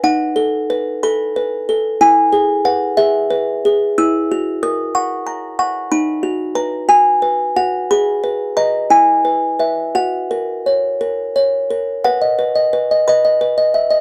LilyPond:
\new Staff \with { instrumentName = "Music box" } { \time 6/8 \key b \major \tempo 4. = 60 << { fis''4. b''4. | gis''4 fis''8 e''4. | e'''4 dis'''8 cis'''4 cis'''8 | b''4 ais''8 gis''4 fis''8 |
b''4 ais''8 gis''4. | fis''4. r4. | <b' fis''>4. <dis'' b''>4. | } \\ { dis'8 a'8 b'8 a'8 b'8 a'8 | e'8 gis'8 b'8 gis'8 b'8 gis'8 | e'8 fis'8 ais'8 fis''8 ais''8 fis''8 | dis'8 fis'8 b'8 fis'8 b'8 fis'8 |
gis'8 b'8 <b' dis''>8 e'8 b'8 <b' e''>8 | fis'8 ais'8 cis''8 ais'8 cis''8 ais'8 | r16 dis''16 b'16 dis''16 b'16 dis''16 b'16 dis''16 b'16 dis''16 e''16 dis''16 | } >> }